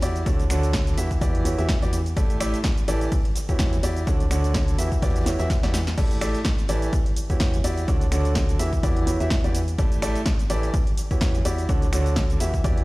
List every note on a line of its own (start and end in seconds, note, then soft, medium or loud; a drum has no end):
0.01 0.24 E2 loud
0.01 0.23 E4 medium
0.01 0.23 F#4 medium
0.01 0.23 G4 medium
0.01 0.23 D5 medium
0.01 closed hi-hat medium
0.01 open hi-hat loud
0.01 shaker medium
0.16 snare soft
0.16 closed hi-hat soft
0.16 shaker soft
0.26 0.48 D2 loud
0.26 0.42 D3 medium
0.26 0.42 D4 medium
0.26 0.42 F#4 medium
0.26 0.42 A4 medium
0.26 0.42 C#5 loud
0.26 kick loud
0.26 closed hi-hat medium
0.26 shaker soft
0.40 snare soft
0.40 closed hi-hat soft
0.40 shaker soft
0.50 0.95 D2 loud
0.50 0.95 D3 medium
0.50 0.95 D4 medium
0.50 0.95 F#4 medium
0.50 0.95 A4 medium
0.50 0.95 C#5 loud
0.50 finger snap medium
0.50 closed hi-hat medium
0.50 open hi-hat loud
0.50 shaker medium
0.63 closed hi-hat soft
0.63 shaker soft
0.73 kick loud
0.73 snare loud
0.73 closed hi-hat medium
0.73 shaker soft
0.87 closed hi-hat soft
0.87 shaker soft
0.98 1.19 E2 loud
0.98 1.18 E3 medium
0.98 1.18 E4 medium
0.98 1.18 F#4 medium
0.98 1.18 G4 medium
0.98 1.18 E5 medium
0.98 closed hi-hat medium
0.98 open hi-hat loud
0.98 shaker medium
1.11 kick medium
1.11 snare soft
1.11 closed hi-hat soft
1.11 shaker soft
1.21 1.43 E2 loud
1.21 1.43 E3 medium
1.21 1.43 E4 medium
1.21 1.43 F#4 medium
1.21 1.43 G4 medium
1.21 1.43 D5 loud
1.21 kick loud
1.21 closed hi-hat medium
1.21 shaker soft
1.35 closed hi-hat soft
1.45 1.56 E2 loud
1.45 1.55 E3 medium
1.45 1.55 E4 medium
1.45 1.55 F#4 medium
1.45 1.55 G4 medium
1.45 1.55 C#5 medium
1.45 closed hi-hat medium
1.45 open hi-hat loud
1.45 shaker medium
1.58 1.80 E2 loud
1.58 1.72 E3 medium
1.58 1.72 E4 medium
1.58 1.72 F#4 medium
1.58 1.72 G4 medium
1.58 1.72 E5 medium
1.58 closed hi-hat soft
1.58 shaker soft
1.69 kick loud
1.69 snare loud
1.69 closed hi-hat medium
1.69 shaker soft
1.82 2.15 E2 loud
1.82 1.96 E3 medium
1.82 1.96 E4 medium
1.82 1.96 F#4 medium
1.82 1.96 G4 medium
1.82 1.96 D5 medium
1.82 closed hi-hat soft
1.82 shaker soft
1.93 closed hi-hat medium
1.93 open hi-hat loud
1.93 shaker medium
2.06 closed hi-hat soft
2.06 shaker soft
2.17 2.38 A1 medium
2.17 2.37 A3 medium
2.17 2.37 E4 medium
2.17 2.37 G4 medium
2.17 2.37 A4 medium
2.17 2.37 D5 loud
2.17 kick loud
2.17 closed hi-hat medium
2.17 shaker soft
2.30 closed hi-hat soft
2.30 shaker soft
2.40 2.54 A1 loud
2.40 2.56 A3 loud
2.40 2.56 E4 medium
2.40 2.56 G4 medium
2.40 2.56 A4 medium
2.40 2.56 D5 loud
2.40 finger snap medium
2.40 closed hi-hat medium
2.40 open hi-hat loud
2.40 shaker medium
2.54 snare soft
2.54 closed hi-hat soft
2.54 shaker soft
2.64 kick loud
2.64 snare loud
2.64 closed hi-hat medium
2.64 shaker soft
2.78 closed hi-hat soft
2.78 shaker soft
2.88 3.08 A1 loud
2.88 3.11 E3 loud
2.88 3.11 E4 medium
2.88 3.11 G4 medium
2.88 3.11 A4 medium
2.88 3.11 D5 loud
2.88 open hi-hat medium
2.88 open hi-hat loud
2.88 shaker medium
3.01 closed hi-hat soft
3.01 shaker soft
3.12 kick loud
3.12 closed hi-hat medium
3.12 open hi-hat medium
3.12 shaker soft
3.25 closed hi-hat soft
3.35 snare loud
3.35 closed hi-hat medium
3.35 open hi-hat loud
3.35 shaker medium
3.49 3.81 E2 medium
3.49 3.73 E3 medium
3.49 3.73 E4 medium
3.49 3.73 F#4 medium
3.49 3.73 G4 medium
3.49 3.73 C#5 loud
3.49 kick medium
3.49 closed hi-hat soft
3.49 shaker soft
3.59 kick loud
3.59 snare loud
3.59 closed hi-hat medium
3.59 shaker soft
3.73 closed hi-hat soft
3.73 shaker soft
3.83 4.05 E2 loud
3.83 4.04 E4 medium
3.83 4.04 F#4 medium
3.83 4.04 G4 medium
3.83 4.04 D5 medium
3.83 closed hi-hat medium
3.83 open hi-hat loud
3.83 shaker medium
3.96 snare soft
3.96 closed hi-hat soft
3.96 shaker soft
4.07 4.29 D2 medium
4.07 4.23 D3 medium
4.07 4.23 D4 medium
4.07 4.23 F#4 medium
4.07 4.23 A4 medium
4.07 4.23 C#5 loud
4.07 kick loud
4.07 closed hi-hat medium
4.07 closed hi-hat loud
4.07 shaker soft
4.20 snare medium
4.20 closed hi-hat soft
4.20 shaker soft
4.31 4.76 D2 loud
4.31 4.76 D3 medium
4.31 4.76 D4 medium
4.31 4.76 F#4 medium
4.31 4.76 A4 medium
4.31 4.76 C#5 loud
4.31 finger snap medium
4.31 closed hi-hat medium
4.31 open hi-hat loud
4.31 shaker medium
4.44 closed hi-hat soft
4.44 shaker soft
4.54 kick loud
4.54 snare loud
4.54 closed hi-hat medium
4.54 shaker soft
4.68 closed hi-hat soft
4.68 shaker soft
4.78 5.00 E2 loud
4.78 4.99 E3 medium
4.78 4.99 E4 medium
4.78 4.99 F#4 medium
4.78 4.99 G4 medium
4.78 4.99 E5 medium
4.78 closed hi-hat medium
4.78 open hi-hat loud
4.78 shaker medium
4.92 kick medium
4.92 snare soft
4.92 closed hi-hat soft
4.92 shaker soft
5.02 5.24 E2 loud
5.02 5.24 E3 medium
5.02 5.24 E4 medium
5.02 5.24 F#4 medium
5.02 5.24 G4 medium
5.02 5.24 D5 loud
5.02 kick loud
5.02 snare medium
5.02 closed hi-hat medium
5.02 shaker soft
5.09 snare medium
5.09 closed hi-hat medium
5.15 snare medium
5.15 closed hi-hat medium
5.15 closed hi-hat soft
5.15 shaker soft
5.21 snare medium
5.21 closed hi-hat medium
5.26 5.37 E2 medium
5.26 5.36 E3 medium
5.26 5.36 E4 medium
5.26 5.36 F#4 medium
5.26 5.36 G4 medium
5.26 5.36 C#5 medium
5.26 snare medium
5.26 snare loud
5.26 closed hi-hat medium
5.26 open hi-hat loud
5.26 shaker medium
5.39 5.61 E2 loud
5.39 5.53 E3 medium
5.39 5.53 E4 medium
5.39 5.53 F#4 medium
5.39 5.53 G4 medium
5.39 5.53 E5 medium
5.39 snare loud
5.39 closed hi-hat medium
5.39 closed hi-hat soft
5.39 shaker soft
5.50 kick loud
5.50 snare loud
5.50 snare medium
5.50 closed hi-hat medium
5.50 shaker soft
5.63 5.95 E2 loud
5.63 5.77 E3 medium
5.63 5.77 E4 medium
5.63 5.77 F#4 medium
5.63 5.77 G4 medium
5.63 5.77 D5 medium
5.63 snare loud
5.63 snare medium
5.63 closed hi-hat medium
5.63 closed hi-hat soft
5.63 shaker soft
5.74 snare loud
5.74 open hi-hat loud
5.74 shaker medium
5.87 snare medium
5.87 snare soft
5.87 closed hi-hat soft
5.87 shaker soft
5.98 6.19 A1 loud
5.98 6.18 A3 medium
5.98 6.18 E4 medium
5.98 6.18 G4 medium
5.98 6.18 A4 medium
5.98 6.18 D5 loud
5.98 kick loud
5.98 closed hi-hat medium
5.98 crash medium
5.98 shaker soft
6.11 closed hi-hat soft
6.11 shaker soft
6.21 6.35 A1 loud
6.21 6.37 A3 loud
6.21 6.37 E4 medium
6.21 6.37 G4 medium
6.21 6.37 A4 medium
6.21 6.37 D5 loud
6.21 finger snap medium
6.21 closed hi-hat medium
6.21 open hi-hat loud
6.21 shaker medium
6.34 snare soft
6.34 closed hi-hat soft
6.34 shaker soft
6.44 kick loud
6.44 snare loud
6.44 closed hi-hat medium
6.44 shaker soft
6.58 closed hi-hat soft
6.58 shaker soft
6.68 6.89 A1 loud
6.68 6.92 E3 loud
6.68 6.92 E4 medium
6.68 6.92 G4 medium
6.68 6.92 A4 medium
6.68 6.92 D5 loud
6.68 closed hi-hat medium
6.68 open hi-hat loud
6.68 shaker medium
6.82 closed hi-hat soft
6.82 shaker soft
6.93 kick loud
6.93 closed hi-hat medium
6.93 open hi-hat medium
6.93 shaker soft
7.06 closed hi-hat soft
7.16 closed hi-hat medium
7.16 open hi-hat loud
7.16 shaker medium
7.30 7.62 E2 loud
7.30 7.54 E3 medium
7.30 7.54 E4 medium
7.30 7.54 F#4 medium
7.30 7.54 G4 medium
7.30 7.54 C#5 medium
7.30 kick medium
7.30 closed hi-hat soft
7.30 shaker soft
7.40 kick loud
7.40 snare loud
7.40 closed hi-hat medium
7.40 shaker soft
7.54 closed hi-hat soft
7.54 shaker soft
7.64 7.86 E2 loud
7.64 7.85 E4 medium
7.64 7.85 F#4 medium
7.64 7.85 G4 medium
7.64 7.85 D5 medium
7.64 closed hi-hat medium
7.64 open hi-hat loud
7.64 shaker medium
7.77 snare soft
7.77 closed hi-hat soft
7.77 shaker soft
7.88 8.10 D2 medium
7.88 8.04 D3 medium
7.88 8.04 D4 medium
7.88 8.04 F#4 medium
7.88 8.04 A4 medium
7.88 8.04 C#5 loud
7.88 kick loud
7.88 closed hi-hat medium
7.88 shaker soft
8.01 snare soft
8.01 closed hi-hat soft
8.01 shaker soft
8.12 8.57 D2 loud
8.12 8.57 D3 medium
8.12 8.57 D4 medium
8.12 8.57 F#4 medium
8.12 8.57 A4 medium
8.12 8.57 C#5 loud
8.12 finger snap medium
8.12 closed hi-hat medium
8.12 open hi-hat loud
8.12 shaker medium
8.25 closed hi-hat soft
8.25 shaker soft
8.35 kick loud
8.35 snare loud
8.35 closed hi-hat medium
8.35 shaker soft
8.49 closed hi-hat soft
8.49 shaker soft
8.59 8.81 E2 loud
8.59 8.80 E3 medium
8.59 8.80 E4 medium
8.59 8.80 F#4 medium
8.59 8.80 G4 medium
8.59 8.80 E5 medium
8.59 closed hi-hat medium
8.59 open hi-hat loud
8.59 shaker medium
8.72 kick medium
8.72 snare soft
8.72 closed hi-hat soft
8.72 shaker soft
8.83 9.05 E2 loud
8.83 9.05 E3 medium
8.83 9.05 E4 medium
8.83 9.05 F#4 medium
8.83 9.05 G4 medium
8.83 9.05 D5 loud
8.83 kick loud
8.83 closed hi-hat medium
8.83 shaker soft
8.97 closed hi-hat soft
9.07 9.18 E2 loud
9.07 9.17 E3 medium
9.07 9.17 E4 medium
9.07 9.17 F#4 medium
9.07 9.17 G4 medium
9.07 9.17 C#5 medium
9.07 closed hi-hat medium
9.07 open hi-hat loud
9.07 shaker medium
9.20 9.41 E2 loud
9.20 9.34 E3 medium
9.20 9.34 E4 medium
9.20 9.34 F#4 medium
9.20 9.34 G4 medium
9.20 9.34 E5 medium
9.20 closed hi-hat soft
9.20 shaker soft
9.30 kick loud
9.30 snare loud
9.30 closed hi-hat medium
9.30 shaker soft
9.44 9.76 E2 loud
9.44 9.58 E3 medium
9.44 9.58 E4 medium
9.44 9.58 F#4 medium
9.44 9.58 G4 medium
9.44 9.58 D5 medium
9.44 closed hi-hat soft
9.44 shaker soft
9.55 closed hi-hat medium
9.55 open hi-hat loud
9.55 shaker medium
9.68 closed hi-hat soft
9.68 shaker soft
9.78 10.00 A1 medium
9.78 9.99 A3 medium
9.78 9.99 E4 medium
9.78 9.99 G4 medium
9.78 9.99 A4 medium
9.78 9.99 D5 loud
9.78 kick loud
9.78 closed hi-hat medium
9.78 closed hi-hat loud
9.78 shaker soft
9.92 closed hi-hat soft
9.92 shaker soft
10.02 10.16 A1 loud
10.02 10.18 A3 loud
10.02 10.18 E4 medium
10.02 10.18 G4 medium
10.02 10.18 A4 medium
10.02 10.18 D5 loud
10.02 finger snap medium
10.02 closed hi-hat medium
10.02 open hi-hat loud
10.02 shaker medium
10.15 snare soft
10.15 closed hi-hat soft
10.15 shaker soft
10.26 kick loud
10.26 snare loud
10.26 closed hi-hat medium
10.26 shaker soft
10.39 closed hi-hat soft
10.39 shaker soft
10.50 10.70 A1 loud
10.50 10.72 E3 loud
10.50 10.72 E4 medium
10.50 10.72 G4 medium
10.50 10.73 A4 medium
10.50 10.72 D5 loud
10.50 closed hi-hat medium
10.50 open hi-hat loud
10.50 shaker medium
10.63 closed hi-hat soft
10.63 shaker soft
10.74 kick loud
10.74 closed hi-hat medium
10.74 open hi-hat medium
10.74 shaker soft
10.87 closed hi-hat soft
10.97 closed hi-hat medium
10.97 open hi-hat loud
10.97 shaker medium
11.11 11.43 E2 medium
11.11 11.35 E3 medium
11.11 11.35 E4 medium
11.11 11.35 F#4 medium
11.11 11.35 G4 medium
11.11 11.35 C#5 medium
11.11 kick medium
11.11 closed hi-hat soft
11.11 shaker soft
11.21 kick loud
11.21 snare loud
11.21 closed hi-hat medium
11.21 shaker soft
11.35 closed hi-hat soft
11.35 shaker soft
11.45 11.67 E2 loud
11.45 11.66 E4 medium
11.45 11.66 F#4 medium
11.45 11.66 G4 medium
11.45 11.66 D5 medium
11.45 closed hi-hat medium
11.45 open hi-hat loud
11.45 shaker medium
11.58 snare soft
11.58 closed hi-hat soft
11.58 shaker soft
11.69 11.91 D2 medium
11.69 11.85 D3 loud
11.69 11.85 D4 medium
11.69 11.85 F#4 medium
11.69 11.85 A4 medium
11.69 11.85 C#5 loud
11.69 kick loud
11.69 closed hi-hat medium
11.69 shaker soft
11.82 snare soft
11.82 closed hi-hat soft
11.82 shaker soft
11.93 12.38 D2 loud
11.93 12.38 D3 medium
11.93 12.38 D4 medium
11.93 12.38 F#4 medium
11.93 12.38 A4 medium
11.93 12.38 C#5 loud
11.93 finger snap medium
11.93 closed hi-hat medium
11.93 open hi-hat loud
11.93 shaker medium
12.06 closed hi-hat soft
12.06 shaker soft
12.16 kick loud
12.16 snare loud
12.16 closed hi-hat medium
12.16 shaker soft
12.29 closed hi-hat soft
12.29 shaker soft
12.40 12.62 E2 loud
12.40 12.61 E3 medium
12.40 12.61 E4 medium
12.40 12.61 F#4 medium
12.40 12.61 G4 medium
12.40 12.61 E5 medium
12.40 closed hi-hat medium
12.40 open hi-hat loud
12.40 shaker medium
12.54 kick medium
12.54 snare soft
12.54 closed hi-hat soft
12.54 shaker soft
12.64 12.84 E2 loud
12.64 12.84 E3 medium
12.64 12.84 E4 medium
12.64 12.84 F#4 medium
12.64 12.84 G4 medium
12.64 12.84 D5 loud
12.64 kick loud
12.64 closed hi-hat medium
12.64 shaker soft
12.78 closed hi-hat soft